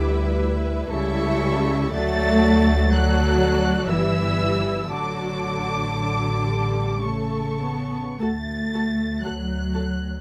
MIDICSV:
0, 0, Header, 1, 6, 480
1, 0, Start_track
1, 0, Key_signature, 2, "major"
1, 0, Tempo, 963082
1, 443, Tempo, 1045296
1, 923, Time_signature, 3, 2, 24, 8
1, 923, Tempo, 990099
1, 2363, Tempo, 1061947
1, 3323, Tempo, 1174168
1, 3803, Tempo, 1008403
1, 4758, End_track
2, 0, Start_track
2, 0, Title_t, "Violin section"
2, 0, Program_c, 0, 48
2, 0, Note_on_c, 0, 86, 125
2, 204, Note_off_c, 0, 86, 0
2, 440, Note_on_c, 0, 85, 108
2, 904, Note_off_c, 0, 85, 0
2, 922, Note_on_c, 0, 93, 127
2, 1388, Note_off_c, 0, 93, 0
2, 1401, Note_on_c, 0, 90, 114
2, 1867, Note_on_c, 0, 88, 110
2, 1875, Note_off_c, 0, 90, 0
2, 2360, Note_off_c, 0, 88, 0
2, 2367, Note_on_c, 0, 86, 118
2, 3307, Note_off_c, 0, 86, 0
2, 3323, Note_on_c, 0, 85, 83
2, 3803, Note_off_c, 0, 85, 0
2, 3807, Note_on_c, 0, 93, 97
2, 4282, Note_off_c, 0, 93, 0
2, 4301, Note_on_c, 0, 90, 79
2, 4758, Note_off_c, 0, 90, 0
2, 4758, End_track
3, 0, Start_track
3, 0, Title_t, "Violin section"
3, 0, Program_c, 1, 48
3, 0, Note_on_c, 1, 71, 85
3, 0, Note_on_c, 1, 76, 80
3, 424, Note_off_c, 1, 76, 0
3, 426, Note_off_c, 1, 71, 0
3, 442, Note_on_c, 1, 76, 101
3, 444, Note_on_c, 1, 69, 93
3, 912, Note_off_c, 1, 69, 0
3, 913, Note_off_c, 1, 76, 0
3, 918, Note_on_c, 1, 69, 90
3, 920, Note_on_c, 1, 74, 96
3, 1376, Note_off_c, 1, 69, 0
3, 1377, Note_off_c, 1, 74, 0
3, 1401, Note_on_c, 1, 74, 97
3, 1407, Note_on_c, 1, 69, 94
3, 1865, Note_off_c, 1, 74, 0
3, 1868, Note_off_c, 1, 69, 0
3, 1872, Note_on_c, 1, 76, 87
3, 1874, Note_on_c, 1, 71, 80
3, 2362, Note_off_c, 1, 76, 0
3, 2363, Note_off_c, 1, 71, 0
3, 2366, Note_on_c, 1, 69, 72
3, 2367, Note_on_c, 1, 81, 76
3, 3307, Note_off_c, 1, 69, 0
3, 3307, Note_off_c, 1, 81, 0
3, 3327, Note_on_c, 1, 69, 65
3, 3328, Note_on_c, 1, 81, 60
3, 3705, Note_off_c, 1, 69, 0
3, 3706, Note_off_c, 1, 81, 0
3, 3804, Note_on_c, 1, 69, 59
3, 3806, Note_on_c, 1, 81, 58
3, 3843, Note_off_c, 1, 69, 0
3, 3844, Note_off_c, 1, 81, 0
3, 4058, Note_on_c, 1, 69, 53
3, 4059, Note_on_c, 1, 81, 56
3, 4097, Note_off_c, 1, 69, 0
3, 4097, Note_off_c, 1, 81, 0
3, 4301, Note_on_c, 1, 69, 53
3, 4301, Note_on_c, 1, 81, 58
3, 4339, Note_off_c, 1, 69, 0
3, 4339, Note_off_c, 1, 81, 0
3, 4535, Note_on_c, 1, 81, 56
3, 4538, Note_on_c, 1, 69, 52
3, 4573, Note_off_c, 1, 81, 0
3, 4576, Note_off_c, 1, 69, 0
3, 4758, End_track
4, 0, Start_track
4, 0, Title_t, "Viola section"
4, 0, Program_c, 2, 48
4, 0, Note_on_c, 2, 55, 78
4, 0, Note_on_c, 2, 64, 84
4, 426, Note_off_c, 2, 64, 0
4, 445, Note_off_c, 2, 55, 0
4, 451, Note_on_c, 2, 55, 94
4, 452, Note_on_c, 2, 64, 92
4, 917, Note_off_c, 2, 55, 0
4, 918, Note_off_c, 2, 64, 0
4, 934, Note_on_c, 2, 66, 91
4, 935, Note_on_c, 2, 54, 92
4, 1384, Note_off_c, 2, 66, 0
4, 1385, Note_off_c, 2, 54, 0
4, 1406, Note_on_c, 2, 54, 103
4, 1407, Note_on_c, 2, 66, 96
4, 1868, Note_off_c, 2, 54, 0
4, 1868, Note_off_c, 2, 66, 0
4, 1884, Note_on_c, 2, 64, 86
4, 1886, Note_on_c, 2, 55, 81
4, 2359, Note_off_c, 2, 55, 0
4, 2367, Note_off_c, 2, 64, 0
4, 2369, Note_on_c, 2, 66, 74
4, 2370, Note_on_c, 2, 54, 67
4, 2784, Note_off_c, 2, 66, 0
4, 2834, Note_off_c, 2, 54, 0
4, 2840, Note_on_c, 2, 54, 67
4, 3062, Note_off_c, 2, 54, 0
4, 3072, Note_on_c, 2, 55, 66
4, 3321, Note_off_c, 2, 55, 0
4, 3323, Note_on_c, 2, 57, 70
4, 3564, Note_off_c, 2, 57, 0
4, 3564, Note_on_c, 2, 59, 64
4, 3802, Note_off_c, 2, 59, 0
4, 3804, Note_on_c, 2, 57, 67
4, 3804, Note_on_c, 2, 66, 63
4, 3842, Note_off_c, 2, 57, 0
4, 3842, Note_off_c, 2, 66, 0
4, 4059, Note_on_c, 2, 57, 58
4, 4059, Note_on_c, 2, 66, 58
4, 4097, Note_off_c, 2, 57, 0
4, 4097, Note_off_c, 2, 66, 0
4, 4293, Note_on_c, 2, 66, 52
4, 4294, Note_on_c, 2, 57, 54
4, 4331, Note_off_c, 2, 66, 0
4, 4332, Note_off_c, 2, 57, 0
4, 4535, Note_on_c, 2, 66, 52
4, 4536, Note_on_c, 2, 57, 51
4, 4573, Note_off_c, 2, 66, 0
4, 4575, Note_off_c, 2, 57, 0
4, 4758, End_track
5, 0, Start_track
5, 0, Title_t, "Cello section"
5, 0, Program_c, 3, 48
5, 0, Note_on_c, 3, 50, 90
5, 202, Note_off_c, 3, 50, 0
5, 441, Note_on_c, 3, 49, 107
5, 904, Note_off_c, 3, 49, 0
5, 922, Note_on_c, 3, 57, 127
5, 1397, Note_off_c, 3, 57, 0
5, 1397, Note_on_c, 3, 54, 112
5, 1871, Note_on_c, 3, 52, 96
5, 1873, Note_off_c, 3, 54, 0
5, 2360, Note_on_c, 3, 50, 83
5, 2361, Note_off_c, 3, 52, 0
5, 3304, Note_off_c, 3, 50, 0
5, 3323, Note_on_c, 3, 49, 66
5, 3803, Note_off_c, 3, 49, 0
5, 3803, Note_on_c, 3, 57, 78
5, 4281, Note_off_c, 3, 57, 0
5, 4292, Note_on_c, 3, 54, 69
5, 4758, Note_off_c, 3, 54, 0
5, 4758, End_track
6, 0, Start_track
6, 0, Title_t, "Double bass section"
6, 0, Program_c, 4, 48
6, 0, Note_on_c, 4, 38, 79
6, 422, Note_off_c, 4, 38, 0
6, 442, Note_on_c, 4, 37, 97
6, 913, Note_off_c, 4, 37, 0
6, 920, Note_on_c, 4, 38, 101
6, 1852, Note_off_c, 4, 38, 0
6, 1871, Note_on_c, 4, 31, 87
6, 2360, Note_on_c, 4, 33, 73
6, 2361, Note_off_c, 4, 31, 0
6, 3710, Note_off_c, 4, 33, 0
6, 3804, Note_on_c, 4, 38, 68
6, 4234, Note_off_c, 4, 38, 0
6, 4291, Note_on_c, 4, 38, 64
6, 4707, Note_off_c, 4, 38, 0
6, 4758, End_track
0, 0, End_of_file